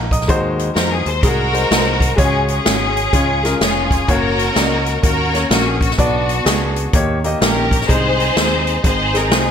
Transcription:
Already playing: A#1 F5 F#5 A#5
0.11 D#5 A#5 D#6, kick, closed hi-hat
0.21 snare
0.28 D#2 D#3 G#3 D#4 F#4 C5, kick, closed hi-hat
0.59 closed hi-hat
0.75 F2 G#3 D#4 F#4 A#4 C5, snare, closed hi-hat
0.92 G#4
1.06 D#2 C5, closed hi-hat
1.23 C2 G#3 D#4 F#4 G#4 A#4, kick, closed hi-hat
1.53 G#3 D#4 F#4 C5, closed hi-hat
1.70 C2 G#3 D#4 F#4 B4, snare, closed hi-hat
1.77 C5
2.00 kick, closed hi-hat
2.16 C#2 C#3 G#3 C#4 F#4 G#4 C#5, kick, closed hi-hat
2.48 C#4 G#4, closed hi-hat
2.65 G#1 G#3 C#4 F#4 C#5, snare, closed hi-hat
2.97 closed hi-hat
3.13 C#2 C#3 G#3 C#4 F4 C#5, kick, closed hi-hat
3.43 G#3 C#4 F4 A#4, snare, closed hi-hat
3.61 F1 G#3 C#4 F4 G#4 C#5, snare, closed hi-hat
3.91 kick, closed hi-hat
4.08 F#1 A#3 C#4 F#4 A#4 C#5, kick, closed hi-hat
4.39 closed hi-hat
4.55 C#2 A#3 C#4 F#4 D5, snare, closed hi-hat
4.63 D#5
4.86 closed hi-hat
5.02 D#2 A#3 C#4 F#4 A#4, kick, closed hi-hat
5.33 A#3 C#4 F#4 C#5, snare, closed hi-hat
5.50 A#1 A#3 C#4 F#4 A#4, snare, closed hi-hat
5.68 G#4
5.81 F#4, kick, closed hi-hat
5.91 snare
5.98 B1 B2 B3 D4 F#4 D5, kick, closed hi-hat
6.29 closed hi-hat
6.45 C#2 B3 D4 F#4 G#4, snare, closed hi-hat
6.76 closed hi-hat
6.93 D#2 D#3 A#3 D#4 G4 C#5, kick, closed hi-hat
7.24 A#3 D#4 G4 D#5, closed hi-hat
7.41 A#1 A#3 C#4 D#4 G4 A#4, snare, closed hi-hat
7.71 kick, closed hi-hat
7.81 snare
7.88 C2 C3 G#3 C4 D#4 G#4 C5, kick, closed hi-hat
8.20 closed hi-hat
8.36 D#2 G#3 C4 D#4 C5, snare, closed hi-hat
8.67 closed hi-hat
8.83 G#1 G#3 C4 D#4 G#4 C5, kick, closed hi-hat
9.14 G#3 C4 D#4 G#4 A#4, snare, closed hi-hat
9.31 C2 G#3 C4 D#4 G#4 C5, snare, closed hi-hat

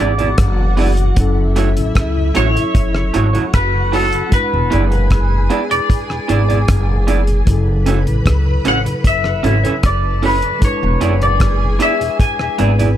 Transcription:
Already playing: E3 B3 D4 G#4 D5
0.00 G#1 B3 E4 F#4 G#4 D5 F#5
0.18 E2 B2 B3 E4 G#4 D5, closed hi-hat
0.38 F#1, kick, cross-stick, closed hi-hat
0.59 E2 B2
0.77 G#3 B3 D4 E4 G#4 D5, open hi-hat
0.97 E2 B2, closed hi-hat
1.14 F#1 F#3 C#4 E4 E5, kick, closed hi-hat
1.20 A4
1.37 F#2 C#3
1.56 A3 E4 F#4 C#5, closed hi-hat
1.77 A1 F#2 C#3, closed hi-hat
1.95 C#2, kick, cross-stick, closed hi-hat
2.17 F#2 C#3
2.35 A1 A3 E4 F#4 C#5, closed hi-hat
2.55 F#2 C#3, muted clean electric guitar stroke, closed hi-hat
2.75 F#1, kick, closed hi-hat
2.95 F#2 C#3, cross-stick
3.14 G#1 A3 E4 F#4 C#5 F#5, closed hi-hat
3.33 F#2 C#3 A3 E4 F#4 C#5, closed hi-hat
3.54 F#1 B4, kick, cross-stick, closed hi-hat
3.74 F#2 C#3
3.92 A3 E4 F#4 A4 C#5, open hi-hat
4.13 F#2 C#3, closed hi-hat
4.29 G#3 D4 G#4 G#5, kick, closed hi-hat
4.33 E4 B4
4.54 E1 E2 B2
4.71 F#1 G#3 B3 D4 E4 G#4 D5, closed hi-hat
4.92 E2 B2, closed hi-hat
5.10 kick, cross-stick, closed hi-hat
5.32 E2 B2
5.50 G#3 B3 D4 E4 G#4 D5, closed hi-hat
5.70 E2 B2 D5, muted clean electric guitar stroke, closed hi-hat
5.90 kick, closed hi-hat
6.10 E2 B2, cross-stick
6.28 G#1 G#3 B3 D4 E4 G#4 D5, closed hi-hat
6.49 E2 B2 B3 E4 G#4 D5, closed hi-hat
6.68 F#1, kick, cross-stick, closed hi-hat
6.89 E2 B2
7.07 G#3 B3 D4 E4 G#4 D5, closed hi-hat
7.27 E2 B2, closed hi-hat
7.45 F#1 C#3 F#3 E4 B4 B5, kick, closed hi-hat
7.51 A4
7.67 F#2 C#3
7.86 A3 C#4 E4 F#4 A4 C#5, closed hi-hat
8.07 A1 F#2 C#3, closed hi-hat
8.26 C#2, kick, cross-stick, closed hi-hat
8.46 F#2 C#3
8.65 A1 A3 C#4 E4 F#4 A4 C#5 F#5, closed hi-hat
8.85 F#2 C#3, muted clean electric guitar stroke, closed hi-hat
9.04 F#1 E5, kick, closed hi-hat
9.24 F#2 C#3, cross-stick
9.43 G#1 A3 C#4 E4 F#4 A4 C#5, closed hi-hat
9.64 F#2 C#3 C#4 E4 A4 C#5, closed hi-hat
9.83 F#1 A4 D5 A5, kick, cross-stick, closed hi-hat
10.04 F#2 C#3
10.22 A3 C#4 E4 F#4 A4 B4 C#5, open hi-hat
10.42 F#2 C#3, closed hi-hat
10.59 G#3 D4 E4 G#4 G#5, kick, closed hi-hat
10.65 B4 C#5
10.82 E1 E2 B2
11.01 F#1 G#3 B3 D4 E4 G#4 D5, closed hi-hat
11.22 E2 B2 D5, closed hi-hat
11.40 kick, cross-stick, closed hi-hat
11.62 E2 B2
11.79 G#3 B3 D4 E4 G#4 D5 E5, closed hi-hat
12.00 E2 B2, muted clean electric guitar stroke, closed hi-hat
12.20 G#5, kick, closed hi-hat
12.39 E2 B2, cross-stick
12.58 G#1 G#3 B3 D4 E4 G#4 B4 D5 B5, closed hi-hat
12.79 E2 B2 B3 E4 G#4 D5, closed hi-hat

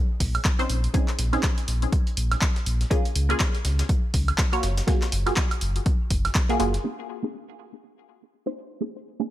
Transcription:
Already playing: C4 C#4 D#4 G#4
0.20 A#1, kick, open hi-hat
0.35 closed hi-hat, high woodblock
0.45 kick, snare, clap, closed hi-hat, tambourine
0.59 C4 C#4 D#4 C5, closed hi-hat
0.69 A#1, open hi-hat, tambourine
0.84 closed hi-hat
0.94 C4 C#4 D#4 G#4, kick, closed hi-hat, tambourine
1.08 clap, closed hi-hat
1.19 A#1, snare, open hi-hat, tambourine
1.33 C4 C#4 D#4 G#4, snare, closed hi-hat, high woodblock
1.43 kick, snare, clap, closed hi-hat, tambourine
1.58 closed hi-hat
1.68 A#1, snare, open hi-hat, tambourine
1.82 closed hi-hat
1.92 kick, closed hi-hat, tambourine
2.07 closed hi-hat
2.17 A#1, open hi-hat, tambourine
2.31 snare, closed hi-hat, high woodblock
2.41 kick, snare, clap, closed hi-hat, tambourine
2.56 snare, closed hi-hat
2.66 A#1, open hi-hat, tambourine
2.81 snare, closed hi-hat
2.90 A#3 C#4 F4 G#4, kick, closed hi-hat, tambourine
3.05 closed hi-hat
3.15 C#2, open hi-hat, tambourine
3.29 A#3 C#4 F4 G#4, closed hi-hat, high woodblock
3.40 kick, snare, clap, closed hi-hat, tambourine
3.54 snare, closed hi-hat
3.65 C#2, snare, open hi-hat, tambourine
3.79 snare, closed hi-hat, tambourine
3.89 kick, closed hi-hat, tambourine
4.14 C#2, kick, open hi-hat
4.28 closed hi-hat, high woodblock
4.38 kick, snare, clap, closed hi-hat, tambourine
4.52 A#3 F4 F#4 C#5, closed hi-hat
4.63 F#1, snare, open hi-hat, tambourine
4.77 snare, closed hi-hat, tambourine
4.87 A#3 F4 F#4 G#4, kick, snare, closed hi-hat, tambourine
5.02 snare, clap, closed hi-hat, tambourine
5.12 F#1, snare, open hi-hat, tambourine
5.26 A#3 F4 F#4 G#4, snare, closed hi-hat, high woodblock
5.36 kick, snare, clap, closed hi-hat, tambourine
5.51 closed hi-hat, high woodblock
5.61 F#1, open hi-hat, tambourine
5.76 closed hi-hat
5.86 kick, closed hi-hat, tambourine
6.10 F#1, kick, open hi-hat, tambourine
6.25 snare, closed hi-hat, high woodblock
6.35 kick, snare, clap, closed hi-hat, tambourine
6.49 A#3 F4 F#4 G#4, snare, closed hi-hat
6.59 F#1 A#3 F4 F#4 G#4, open hi-hat, tambourine
6.74 snare, closed hi-hat
6.84 A#3 C4 C#4 D#4 G#4
7.22 A#3 C4 C#4 D#4 G#4
8.46 A#3 C4 C#4 D#4 C5
8.81 A#3 C4 C#4 D#4 G#4
9.20 A#3 C4 C#4 D#4 G#4

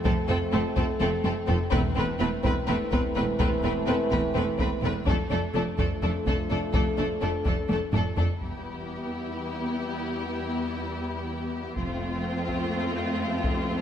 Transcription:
Already playing: F3 A3 C4 A4
0.04 F1 F2 A3 C4 A4, taiko
0.28 F1 F2 A3 C4 A4
0.52 F1 F2 A3 C4 A4
0.76 F1 F2 A3 C4 A4, taiko
1.00 F1 F2 A3 C4 A4, taiko high
1.24 F1 F2 A3 C4 A4, taiko high
1.47 F1 F2 A3 C4 A4, taiko low
1.71 E1 E2 E3 A3 C4 B4, taiko
1.95 E1 E2 A3 C4 B4
2.19 E1 E2 A3 C4 B4
2.43 E1 E2 A3 C4 B4, taiko
2.67 E1 E2 A3 C4 B4
2.92 E1 E2 A3 C4 B4, taiko
3.15 E1 E2 A3 C4 B4
3.39 E1 E2 A3 C4 B4, taiko
3.63 E1 E2 A3 C4 B4
3.86 E1 E2 A3 C4 B4
4.10 E1 E2 A3 C4 B4, taiko
4.33 E1 E2 A3 C4 B4, taiko low
4.58 E1 E2 A3 C4 B4, taiko
4.82 E1 E2 A3 C4 B4
5.05 F1 F2 F3 A3 D4 A4, taiko
5.30 F1 F2 A3 D4 A4
5.54 F1 F2 A3 D4 A4
5.78 F1 F2 A3 D4 A4, taiko
6.02 F1 F2 A3 D4 A4, taiko low
6.26 F1 F2 A3 D4 A4, taiko
6.51 F1 F2 A3 D4 A4
6.74 F1 F2 A3 D4 A4, taiko
6.98 F1 F2 A3 D4 A4
7.21 F1 F2 A3 D4 A4
7.44 F1 F2 A3 D4 A4, taiko
7.68 F1 F2 A3 D4 A4, taiko high
7.92 F1 F2 A3 D4 A4, taiko low-mid
8.16 F1 F2 A3 D4 A4, taiko low
8.40 E1 E2 G3 B3 E4 G4, taiko
11.76 F1 F2 A3 C4 F4, taiko
12.49 taiko
13.44 taiko

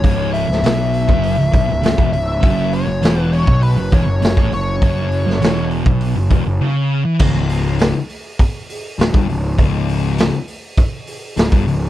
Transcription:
Already playing: C#5
0.03 C#1 C#2, kick, open hi-hat
0.33 E5, open hi-hat
0.48 C#1 C#2, snare
0.63 B1 B2, snare, open hi-hat
0.94 open hi-hat
1.08 F#1 F#2, kick
1.24 open hi-hat
1.38 C#1 C#2
1.53 B1 B2, kick, open hi-hat
1.68 C#1 C#2
1.83 C#1 C#2, snare, open hi-hat
1.98 E1 E2, kick
2.13 C#1 C#2 E5, open hi-hat
2.43 F#1 F#2, kick, open hi-hat
2.73 C#5, open hi-hat
2.87 F#1 F#2
3.02 E1 E2, snare, open hi-hat
3.21 B4
3.33 C#5, open hi-hat
3.47 B1 B2, kick
3.62 B4, open hi-hat
3.77 F#1 F#2
3.92 E1 E2 C#5, kick, open hi-hat
4.07 F#1 F#2
4.21 F#1 F#2, snare, open hi-hat
4.37 A1 A2, kick
4.51 F#1 F#2 C#5, open hi-hat
4.82 F#1 F#2, kick, open hi-hat
5.12 open hi-hat
5.26 F#1 F#2, snare
5.41 E1 E2, snare, open hi-hat
5.71 open hi-hat
5.85 B1 B2, kick
6.01 open hi-hat
6.15 F#1 F#2
6.30 E1 E2, kick, open hi-hat
6.46 F#1 F#2
6.60 C#3
7.05 E3
7.19 C#1 C#2, kick, crash
7.49 open hi-hat
7.79 snare, open hi-hat
8.09 open hi-hat
8.39 kick, open hi-hat
8.70 open hi-hat
8.99 C#1 C#2, snare, open hi-hat
9.14 G1 G2, kick
9.28 C#1 C#2, open hi-hat
9.58 C#1 C#2, kick, open hi-hat
9.89 open hi-hat
10.18 snare, open hi-hat
10.48 open hi-hat
10.77 kick, open hi-hat
11.07 open hi-hat
11.37 C#1 C#2, snare, open hi-hat
11.52 G1 G2, kick
11.67 C#1 C#2, open hi-hat

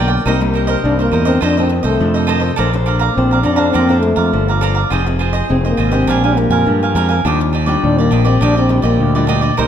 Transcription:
Already playing: B1 D3 F3 A#3 D4
0.08 A#4 D5 G5
0.26 C2 C3 G3 A#3 D#4 A#4 C5 D#5
0.41 G3 A#3 D#4, muted cavaquinho stroke
0.53 D#4 A#4 C5 D#5
0.67 A#4 C5 D#5
0.83 C2 G2 G3 A#3 D4 D#4
0.99 A#3 A#4 C5 D#5
1.12 E2 D#4 A#4 C5 D#5
1.25 D#3 A3 C4 D4 A#4 C5 D#5
1.41 F2 D4 F4 A4 C5 D#5
1.57 D#3 A3 C4 D4 A4 C5 D#5
1.69 muted cavaquinho stroke
1.83 C2 A3 A4 C5 D#5
2.00 F2 C3 D#3 A3 D4
2.14 A4 C5 D#5
2.27 D#3 A3 D4 F4 A4 C5 D#5
2.40 A4 C5 D#5
2.56 A#1 A#3 D4 A4 C5 D5 F5 A#5
2.73 D4 A4 C5, muted cavaquinho stroke
2.86 A4 D5 F5 A#5
2.99 D5 F5 A#5
3.16 A#1 F3 C4 D4 A4 C5
3.31 D5 F5 A#5
3.42 F2 D4 A4 D5 F5 A#5
3.54 D4 F5 A#5
3.58 D4 A4 C5 D5
3.71 F2 A#3 C4 A4 D5 F5 A#5
3.89 D4 A4 C5 D5 F5 A#5
4.00 A3, muted cavaquinho stroke
4.16 F2 D5 F5 A#5
4.33 G1 F3 D4 A4 C5
4.48 D5 F5 A#5
4.61 D4 A4 C5 D5 F5 A#5
4.75 D5 F5 A#5
4.90 F1 F3 C4 D#4 F4 G#4 C5 D#5
5.06 C4 D#4 G#4, muted cavaquinho stroke
5.19 F4 G#4 C5 D#5
5.33 G#4 C5 D#5
5.49 F1 C3 C4 D#4 G#4
5.65 A#3 G#4 C5 D#5
5.77 G#1 F4 G#4 C5 D#5
5.91 G#3 C4 D4 G4 G#4 C5 D#5
6.07 A#1 A#2 D4 A#4 F5 G#5
6.23 G#3 D4 G4 A#4 F5 G#5
6.37 A#3, muted cavaquinho stroke
6.49 F2 A#4 F5 G#5
6.66 G2 F3 G#3 D4 G4
6.83 A#4 F5 G#5
6.95 F2 G#3 D4 G4 A#4 F5 G#5
7.09 A#4 F5 G#5
7.25 D#2 D#3 G3 D4 F4 G4 D5 D#5
7.40 muted cavaquinho stroke
7.53 D4 G4 D5 D#5
7.66 G3 D4 F4 G4 D5 D#5
7.83 D#2 A#2 D4
7.98 A#3 G4 D5 D#5
8.11 A#1 G3 D4 F4 G4 D5 D#5
8.25 C4 G4 D5 D#5
8.41 A#1 D#3 D4 G4 D5 D#5
8.56 C4 G4 D5 D#5
8.69 G3 D4 F4, muted cavaquinho stroke
8.82 A#1 A#3 G4 D5 D#5
9.00 D2 A#2
9.15 G3 D4 F4 G4 D5 D#5
9.27 G3 D4 F4 G4 D5 D#5
9.41 G4 D5 D#5
9.57 C2 C3 G3 A#3 D#4 A#4 C5 D#5

